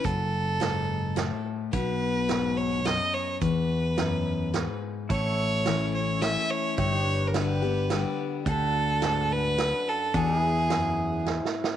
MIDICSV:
0, 0, Header, 1, 6, 480
1, 0, Start_track
1, 0, Tempo, 560748
1, 40, Time_signature, 3, 2, 24, 8
1, 10073, End_track
2, 0, Start_track
2, 0, Title_t, "Fiddle"
2, 0, Program_c, 0, 110
2, 42, Note_on_c, 0, 69, 81
2, 1243, Note_off_c, 0, 69, 0
2, 1478, Note_on_c, 0, 71, 86
2, 2204, Note_on_c, 0, 73, 83
2, 2217, Note_off_c, 0, 71, 0
2, 2449, Note_on_c, 0, 75, 90
2, 2462, Note_off_c, 0, 73, 0
2, 2687, Note_on_c, 0, 73, 79
2, 2700, Note_off_c, 0, 75, 0
2, 2926, Note_off_c, 0, 73, 0
2, 2935, Note_on_c, 0, 71, 78
2, 4096, Note_off_c, 0, 71, 0
2, 4373, Note_on_c, 0, 73, 92
2, 5055, Note_off_c, 0, 73, 0
2, 5091, Note_on_c, 0, 73, 80
2, 5325, Note_on_c, 0, 76, 84
2, 5338, Note_off_c, 0, 73, 0
2, 5567, Note_on_c, 0, 73, 86
2, 5580, Note_off_c, 0, 76, 0
2, 5806, Note_off_c, 0, 73, 0
2, 5812, Note_on_c, 0, 73, 90
2, 6227, Note_on_c, 0, 70, 52
2, 6240, Note_off_c, 0, 73, 0
2, 6291, Note_on_c, 0, 71, 76
2, 6304, Note_off_c, 0, 70, 0
2, 7008, Note_off_c, 0, 71, 0
2, 7254, Note_on_c, 0, 69, 94
2, 7980, Note_on_c, 0, 71, 99
2, 7993, Note_off_c, 0, 69, 0
2, 8464, Note_on_c, 0, 69, 85
2, 8477, Note_off_c, 0, 71, 0
2, 8700, Note_on_c, 0, 68, 90
2, 8713, Note_off_c, 0, 69, 0
2, 9649, Note_off_c, 0, 68, 0
2, 10073, End_track
3, 0, Start_track
3, 0, Title_t, "Pedal steel guitar"
3, 0, Program_c, 1, 26
3, 4359, Note_on_c, 1, 64, 60
3, 4372, Note_on_c, 1, 69, 61
3, 4379, Note_on_c, 1, 73, 64
3, 5788, Note_off_c, 1, 64, 0
3, 5794, Note_off_c, 1, 69, 0
3, 5798, Note_off_c, 1, 73, 0
3, 5803, Note_on_c, 1, 64, 63
3, 5812, Note_on_c, 1, 67, 66
3, 5824, Note_on_c, 1, 73, 63
3, 6017, Note_off_c, 1, 64, 0
3, 6017, Note_on_c, 1, 62, 63
3, 6038, Note_off_c, 1, 73, 0
3, 6038, Note_on_c, 1, 71, 63
3, 7229, Note_off_c, 1, 62, 0
3, 7234, Note_off_c, 1, 67, 0
3, 7240, Note_off_c, 1, 71, 0
3, 7242, Note_on_c, 1, 62, 68
3, 7251, Note_on_c, 1, 67, 64
3, 7262, Note_on_c, 1, 69, 66
3, 7423, Note_off_c, 1, 67, 0
3, 7423, Note_on_c, 1, 66, 64
3, 8667, Note_off_c, 1, 62, 0
3, 8672, Note_off_c, 1, 66, 0
3, 8677, Note_off_c, 1, 69, 0
3, 8682, Note_on_c, 1, 62, 66
3, 8688, Note_on_c, 1, 66, 62
3, 8698, Note_on_c, 1, 69, 62
3, 8896, Note_off_c, 1, 62, 0
3, 8896, Note_on_c, 1, 64, 66
3, 8902, Note_off_c, 1, 66, 0
3, 8902, Note_on_c, 1, 68, 62
3, 8912, Note_off_c, 1, 69, 0
3, 8912, Note_on_c, 1, 71, 62
3, 10073, Note_off_c, 1, 64, 0
3, 10073, Note_off_c, 1, 68, 0
3, 10073, Note_off_c, 1, 71, 0
3, 10073, End_track
4, 0, Start_track
4, 0, Title_t, "Steel-string acoustic guitar"
4, 0, Program_c, 2, 25
4, 34, Note_on_c, 2, 42, 76
4, 510, Note_off_c, 2, 42, 0
4, 513, Note_on_c, 2, 44, 79
4, 974, Note_off_c, 2, 44, 0
4, 994, Note_on_c, 2, 45, 75
4, 1454, Note_off_c, 2, 45, 0
4, 1480, Note_on_c, 2, 47, 83
4, 1958, Note_on_c, 2, 44, 83
4, 2394, Note_off_c, 2, 47, 0
4, 2417, Note_off_c, 2, 44, 0
4, 2440, Note_on_c, 2, 42, 70
4, 2898, Note_off_c, 2, 42, 0
4, 2922, Note_on_c, 2, 40, 80
4, 3405, Note_off_c, 2, 40, 0
4, 3408, Note_on_c, 2, 42, 81
4, 3863, Note_off_c, 2, 42, 0
4, 3883, Note_on_c, 2, 44, 69
4, 4340, Note_off_c, 2, 44, 0
4, 4366, Note_on_c, 2, 45, 73
4, 4844, Note_on_c, 2, 52, 49
4, 4848, Note_on_c, 2, 57, 50
4, 4855, Note_on_c, 2, 61, 58
4, 4856, Note_on_c, 2, 64, 65
4, 5277, Note_off_c, 2, 45, 0
4, 5300, Note_off_c, 2, 52, 0
4, 5303, Note_off_c, 2, 57, 0
4, 5306, Note_off_c, 2, 61, 0
4, 5306, Note_off_c, 2, 64, 0
4, 5318, Note_on_c, 2, 52, 53
4, 5323, Note_on_c, 2, 57, 53
4, 5329, Note_on_c, 2, 61, 48
4, 5333, Note_on_c, 2, 64, 51
4, 5777, Note_off_c, 2, 52, 0
4, 5780, Note_off_c, 2, 57, 0
4, 5783, Note_off_c, 2, 61, 0
4, 5785, Note_off_c, 2, 64, 0
4, 5803, Note_on_c, 2, 43, 81
4, 6282, Note_on_c, 2, 50, 54
4, 6289, Note_on_c, 2, 55, 59
4, 6292, Note_on_c, 2, 59, 60
4, 6296, Note_on_c, 2, 67, 64
4, 6514, Note_off_c, 2, 50, 0
4, 6514, Note_off_c, 2, 67, 0
4, 6517, Note_off_c, 2, 55, 0
4, 6519, Note_off_c, 2, 59, 0
4, 6525, Note_on_c, 2, 67, 53
4, 6539, Note_on_c, 2, 59, 43
4, 6716, Note_off_c, 2, 43, 0
4, 6755, Note_off_c, 2, 67, 0
4, 6762, Note_off_c, 2, 59, 0
4, 6762, Note_on_c, 2, 50, 55
4, 6768, Note_on_c, 2, 55, 55
4, 6774, Note_on_c, 2, 59, 53
4, 6779, Note_on_c, 2, 67, 54
4, 7219, Note_off_c, 2, 50, 0
4, 7222, Note_off_c, 2, 55, 0
4, 7225, Note_off_c, 2, 59, 0
4, 7227, Note_off_c, 2, 67, 0
4, 7249, Note_on_c, 2, 50, 77
4, 7721, Note_on_c, 2, 44, 82
4, 8157, Note_off_c, 2, 50, 0
4, 8178, Note_off_c, 2, 44, 0
4, 8206, Note_on_c, 2, 42, 75
4, 8660, Note_off_c, 2, 42, 0
4, 8681, Note_on_c, 2, 40, 82
4, 9159, Note_off_c, 2, 40, 0
4, 9163, Note_on_c, 2, 42, 79
4, 9617, Note_off_c, 2, 42, 0
4, 9643, Note_on_c, 2, 44, 68
4, 10073, Note_off_c, 2, 44, 0
4, 10073, End_track
5, 0, Start_track
5, 0, Title_t, "Fingered electric bass"
5, 0, Program_c, 3, 33
5, 42, Note_on_c, 3, 30, 79
5, 1115, Note_off_c, 3, 30, 0
5, 1483, Note_on_c, 3, 35, 78
5, 2556, Note_off_c, 3, 35, 0
5, 2924, Note_on_c, 3, 40, 82
5, 3997, Note_off_c, 3, 40, 0
5, 4367, Note_on_c, 3, 33, 73
5, 5438, Note_off_c, 3, 33, 0
5, 5806, Note_on_c, 3, 31, 81
5, 6877, Note_off_c, 3, 31, 0
5, 7242, Note_on_c, 3, 38, 84
5, 8314, Note_off_c, 3, 38, 0
5, 8682, Note_on_c, 3, 40, 79
5, 9752, Note_off_c, 3, 40, 0
5, 10073, End_track
6, 0, Start_track
6, 0, Title_t, "Drums"
6, 41, Note_on_c, 9, 36, 98
6, 44, Note_on_c, 9, 42, 52
6, 127, Note_off_c, 9, 36, 0
6, 130, Note_off_c, 9, 42, 0
6, 522, Note_on_c, 9, 38, 80
6, 522, Note_on_c, 9, 42, 58
6, 608, Note_off_c, 9, 38, 0
6, 608, Note_off_c, 9, 42, 0
6, 1000, Note_on_c, 9, 38, 78
6, 1000, Note_on_c, 9, 42, 59
6, 1086, Note_off_c, 9, 38, 0
6, 1086, Note_off_c, 9, 42, 0
6, 1481, Note_on_c, 9, 42, 54
6, 1482, Note_on_c, 9, 36, 88
6, 1567, Note_off_c, 9, 42, 0
6, 1568, Note_off_c, 9, 36, 0
6, 1961, Note_on_c, 9, 38, 78
6, 1961, Note_on_c, 9, 42, 54
6, 2047, Note_off_c, 9, 38, 0
6, 2047, Note_off_c, 9, 42, 0
6, 2443, Note_on_c, 9, 38, 76
6, 2443, Note_on_c, 9, 42, 54
6, 2529, Note_off_c, 9, 38, 0
6, 2529, Note_off_c, 9, 42, 0
6, 2925, Note_on_c, 9, 36, 101
6, 2925, Note_on_c, 9, 42, 52
6, 3011, Note_off_c, 9, 36, 0
6, 3011, Note_off_c, 9, 42, 0
6, 3403, Note_on_c, 9, 38, 78
6, 3403, Note_on_c, 9, 42, 59
6, 3489, Note_off_c, 9, 38, 0
6, 3489, Note_off_c, 9, 42, 0
6, 3887, Note_on_c, 9, 38, 74
6, 3887, Note_on_c, 9, 42, 55
6, 3972, Note_off_c, 9, 38, 0
6, 3972, Note_off_c, 9, 42, 0
6, 4365, Note_on_c, 9, 36, 96
6, 4365, Note_on_c, 9, 42, 57
6, 4450, Note_off_c, 9, 42, 0
6, 4451, Note_off_c, 9, 36, 0
6, 4843, Note_on_c, 9, 38, 77
6, 4843, Note_on_c, 9, 42, 57
6, 4928, Note_off_c, 9, 38, 0
6, 4928, Note_off_c, 9, 42, 0
6, 5324, Note_on_c, 9, 38, 76
6, 5324, Note_on_c, 9, 42, 61
6, 5410, Note_off_c, 9, 38, 0
6, 5410, Note_off_c, 9, 42, 0
6, 5802, Note_on_c, 9, 42, 52
6, 5804, Note_on_c, 9, 36, 88
6, 5888, Note_off_c, 9, 42, 0
6, 5890, Note_off_c, 9, 36, 0
6, 6284, Note_on_c, 9, 38, 78
6, 6284, Note_on_c, 9, 42, 57
6, 6369, Note_off_c, 9, 38, 0
6, 6369, Note_off_c, 9, 42, 0
6, 6763, Note_on_c, 9, 38, 75
6, 6763, Note_on_c, 9, 42, 51
6, 6849, Note_off_c, 9, 38, 0
6, 6849, Note_off_c, 9, 42, 0
6, 7242, Note_on_c, 9, 36, 102
6, 7242, Note_on_c, 9, 42, 56
6, 7327, Note_off_c, 9, 42, 0
6, 7328, Note_off_c, 9, 36, 0
6, 7721, Note_on_c, 9, 38, 75
6, 7721, Note_on_c, 9, 42, 57
6, 7806, Note_off_c, 9, 38, 0
6, 7806, Note_off_c, 9, 42, 0
6, 8203, Note_on_c, 9, 38, 77
6, 8203, Note_on_c, 9, 42, 58
6, 8288, Note_off_c, 9, 38, 0
6, 8288, Note_off_c, 9, 42, 0
6, 8682, Note_on_c, 9, 36, 99
6, 8684, Note_on_c, 9, 42, 56
6, 8768, Note_off_c, 9, 36, 0
6, 8770, Note_off_c, 9, 42, 0
6, 9160, Note_on_c, 9, 38, 76
6, 9160, Note_on_c, 9, 42, 58
6, 9246, Note_off_c, 9, 38, 0
6, 9246, Note_off_c, 9, 42, 0
6, 9641, Note_on_c, 9, 38, 48
6, 9726, Note_off_c, 9, 38, 0
6, 9803, Note_on_c, 9, 38, 54
6, 9888, Note_off_c, 9, 38, 0
6, 9962, Note_on_c, 9, 38, 82
6, 10048, Note_off_c, 9, 38, 0
6, 10073, End_track
0, 0, End_of_file